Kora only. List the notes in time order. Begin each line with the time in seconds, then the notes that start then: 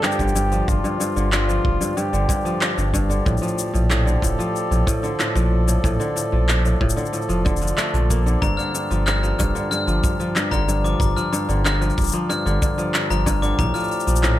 Already playing: D3 F3
0.03 G2
0.19 D3
0.35 G2
0.52 F3
0.84 G2
1.00 G2
1.16 D3
1.32 G2
1.49 F3
1.81 G2
1.97 G2
2.13 D3
2.29 G2
2.45 F3
2.78 G2
2.94 G2
3.10 D3
3.26 A2
3.42 F3
3.74 A2
3.90 A2
4.06 D3
4.22 A2
4.39 F3
4.71 A2
4.87 A2
5.03 D3
5.19 A2
5.35 F3
5.68 A2
5.84 A2
6.00 D3
6.16 A2
6.32 F3
6.65 A2
6.81 A2
6.96 D3
7.13 A2
7.29 F3
7.45 D3
7.61 F3
7.78 A3
7.94 F3
8.10 A#3
8.26 D3
8.42 G2
8.58 D3
8.75 G2
8.91 F3
9.23 F3
9.39 G2
9.55 D3
9.71 G2
9.87 F3
10.20 F3
10.36 G2
10.52 D3
10.68 G2
10.84 F3
11.16 F3
11.33 G2
11.49 D3
11.65 G2
11.81 F3
12.13 F3
12.29 G2
12.46 D3
12.62 G2
12.78 F3
13.10 F3
13.26 G2
13.42 D3
13.58 A2
13.74 F3
14.07 F3
14.23 A2